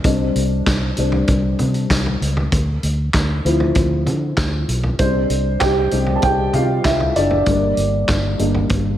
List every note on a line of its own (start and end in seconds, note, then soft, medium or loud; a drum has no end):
0.04 0.30 C2 medium
0.04 0.94 G3 soft
0.04 0.94 C4 soft
0.04 0.94 D4 medium
0.04 kick loud
0.04 closed hi-hat medium
0.35 0.61 C2 medium
0.35 closed hi-hat medium
0.66 0.92 C2 medium
0.66 kick loud
0.66 snare loud
0.66 clap medium
0.66 closed hi-hat medium
0.97 1.23 C2 medium
0.97 1.26 G3 soft
0.97 1.26 C4 soft
0.97 1.26 D4 soft
0.97 closed hi-hat medium
1.12 floor tom medium
1.27 1.54 C2 medium
1.27 kick medium
1.27 closed hi-hat medium
1.59 1.85 C3 medium
1.59 closed hi-hat medium
1.59 floor tom soft
1.74 closed hi-hat soft
1.90 2.15 C2 medium
1.90 kick medium
1.90 snare medium
1.90 clap medium
1.90 closed hi-hat medium
2.06 floor tom medium
2.21 2.47 C#2 medium
2.21 closed hi-hat medium
2.37 floor tom medium
2.52 2.77 D2 medium
2.52 kick loud
2.52 closed hi-hat medium
2.83 3.09 D2 medium
2.83 closed hi-hat medium
3.14 3.39 D2 medium
3.14 kick medium
3.14 snare loud
3.14 clap medium
3.14 closed hi-hat medium
3.45 3.70 D2 medium
3.45 4.96 F3 soft
3.45 4.96 C4 soft
3.45 4.96 E4 soft
3.45 closed hi-hat medium
3.60 floor tom medium
3.75 4.09 D2 medium
3.75 kick medium
3.75 closed hi-hat medium
4.07 4.32 D3 medium
4.07 closed hi-hat medium
4.07 floor tom soft
4.37 4.63 D2 medium
4.37 kick loud
4.37 snare medium
4.37 clap medium
4.37 closed hi-hat medium
4.68 4.94 B1 medium
4.68 closed hi-hat medium
4.84 floor tom medium
4.99 5.25 C2 medium
4.99 5.90 G3 soft
4.99 5.58 C4 medium
4.99 5.91 D4 medium
4.99 5.63 C5 medium
4.99 kick loud
4.99 closed hi-hat medium
5.30 5.55 C2 medium
5.30 closed hi-hat medium
5.60 5.87 C2 medium
5.60 6.13 G4 medium
5.60 6.17 G5 medium
5.60 kick medium
5.60 snare medium
5.60 clap medium
5.60 closed hi-hat medium
5.91 6.18 C2 medium
5.91 6.20 G3 soft
5.91 6.20 C4 soft
5.91 6.20 D4 soft
5.91 closed hi-hat medium
6.07 floor tom medium
6.16 6.23 A5 medium
6.22 6.48 C2 medium
6.22 6.53 G4 medium
6.22 6.55 G5 medium
6.22 kick loud
6.22 closed hi-hat medium
6.53 6.79 C3 medium
6.53 6.84 F4 medium
6.53 6.86 F5 medium
6.53 closed hi-hat medium
6.53 floor tom soft
6.84 7.10 C2 medium
6.84 7.15 E4 medium
6.84 7.17 E5 medium
6.84 kick medium
6.84 snare medium
6.84 clap medium
6.84 closed hi-hat medium
7.00 floor tom soft
7.16 7.41 F#1 medium
7.16 7.47 D4 medium
7.16 8.97 D5 medium
7.16 closed hi-hat medium
7.31 floor tom medium
7.46 7.72 G1 medium
7.46 8.36 G3 soft
7.46 8.36 A#3 soft
7.46 8.36 D4 medium
7.46 kick loud
7.46 closed hi-hat medium
7.77 8.03 G1 medium
7.77 closed hi-hat medium
8.08 8.34 G1 medium
8.08 kick loud
8.08 snare medium
8.08 clap medium
8.08 closed hi-hat medium
8.39 8.65 G1 medium
8.39 8.67 G3 soft
8.39 8.68 A#3 soft
8.39 8.68 D4 soft
8.39 closed hi-hat medium
8.55 floor tom medium
8.69 8.96 G1 medium
8.69 kick medium
8.69 closed hi-hat medium